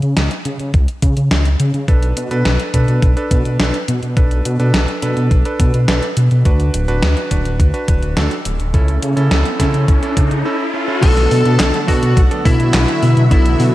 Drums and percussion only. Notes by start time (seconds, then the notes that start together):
0.02 closed hi-hat
0.17 snare, closed hi-hat
0.31 closed hi-hat
0.45 closed hi-hat
0.60 closed hi-hat
0.74 kick, closed hi-hat
0.88 closed hi-hat
1.02 kick, closed hi-hat
1.17 closed hi-hat
1.31 snare, closed hi-hat
1.45 closed hi-hat
1.60 closed hi-hat
1.74 closed hi-hat
1.88 kick, closed hi-hat
2.03 closed hi-hat
2.17 closed hi-hat
2.31 closed hi-hat
2.45 snare, closed hi-hat
2.60 closed hi-hat
2.74 kick, closed hi-hat
2.88 closed hi-hat
3.02 kick, closed hi-hat
3.17 closed hi-hat
3.31 kick, closed hi-hat
3.45 closed hi-hat
3.60 snare, closed hi-hat
3.74 closed hi-hat
3.88 closed hi-hat
4.03 closed hi-hat
4.17 kick, closed hi-hat
4.31 closed hi-hat
4.45 closed hi-hat
4.60 closed hi-hat
4.74 snare, closed hi-hat
4.88 closed hi-hat
5.02 closed hi-hat
5.17 closed hi-hat
5.31 kick, closed hi-hat
5.45 closed hi-hat
5.60 kick, closed hi-hat
5.74 closed hi-hat
5.88 snare, closed hi-hat
6.02 closed hi-hat
6.17 closed hi-hat
6.31 closed hi-hat
6.45 kick, closed hi-hat
6.60 closed hi-hat
6.74 closed hi-hat
6.88 closed hi-hat
7.02 snare, closed hi-hat
7.17 closed hi-hat
7.31 kick, closed hi-hat
7.45 closed hi-hat
7.60 kick, closed hi-hat
7.74 closed hi-hat
7.88 kick, closed hi-hat
8.03 closed hi-hat
8.17 snare, closed hi-hat
8.31 closed hi-hat
8.45 closed hi-hat
8.60 closed hi-hat
8.74 kick, closed hi-hat
8.88 closed hi-hat
9.02 closed hi-hat
9.17 closed hi-hat
9.31 snare, closed hi-hat
9.46 closed hi-hat
9.60 kick, snare, closed hi-hat
9.74 closed hi-hat
9.88 kick, closed hi-hat
10.03 closed hi-hat
10.17 kick, closed hi-hat
10.31 closed hi-hat
11.03 kick, closed hi-hat, crash
11.17 snare, closed hi-hat
11.31 open hi-hat
11.45 closed hi-hat
11.60 snare, clap, closed hi-hat
11.74 closed hi-hat
11.88 kick, open hi-hat
12.03 closed hi-hat
12.17 kick, closed hi-hat
12.31 closed hi-hat
12.45 kick, open hi-hat
12.60 closed hi-hat
12.74 snare, clap, closed hi-hat
12.88 closed hi-hat
13.03 open hi-hat
13.17 closed hi-hat
13.31 kick, closed hi-hat
13.46 closed hi-hat
13.60 open hi-hat